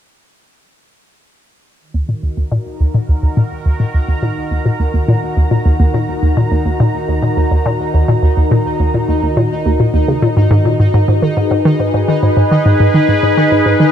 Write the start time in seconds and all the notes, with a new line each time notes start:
1.80 D#3 D#4 D#5
1.87 F#4
1.94 D#2
1.99 D#4 A#4
2.09 A#2
2.23 D#2
2.37 D#2 A#5
2.52 A#2
2.80 D#2
2.94 A#2
3.09 D#2
3.23 D#2
3.37 A#2
3.66 D#2
3.80 A#2
3.94 D#2
4.08 D#2
4.23 A#2
4.51 D#2
4.66 A#2
4.80 D#2
4.94 D#2
5.08 A#2
5.37 D#2
5.51 A#2
5.66 D#2
5.80 D#2
5.94 A#2
6.23 D#2
6.37 A#2
6.51 D#2
6.66 D#2
6.80 A#2
7.08 D#2
7.22 A#2
7.37 D#2
7.51 D#2
7.66 A#2
7.94 D#2
8.08 A#2
8.23 D#2
8.37 D#2
8.51 A#2
8.80 D#2
8.94 A#2
9.09 D#2
9.23 D#2
9.37 A#2
9.66 D#2
9.80 A#2
9.94 D#2
10.08 C#3
10.22 A#2
10.37 G#2
10.51 G#2
10.65 A#2
10.80 G#2
10.94 G#2
11.08 G#2 G#4
11.22 D#3 B4
11.37 G#2
11.51 G#2
11.65 D#3
11.80 G#2
11.94 G#2
12.08 D#3
12.23 G#2
12.37 G#2
12.51 D#3
12.66 G#2
12.80 G#2
12.94 D#3
13.09 G#2
13.23 G#2
13.37 D#3
13.52 G#2
13.66 G#2
13.80 D#3